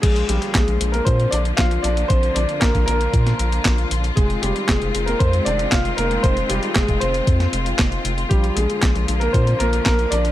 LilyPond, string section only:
\new Staff \with { instrumentName = "String section" } { \clef bass \time 4/4 \key bes \mixolydian \tempo 4 = 116 << { f'1~ | f'1~ | f'1~ | f'1~ |
f'1 | } \\ { <d f bes>1~ | <d f bes>1 | <ees aes c'>1~ | <ees aes c'>1 |
<d f bes>1 | } >> }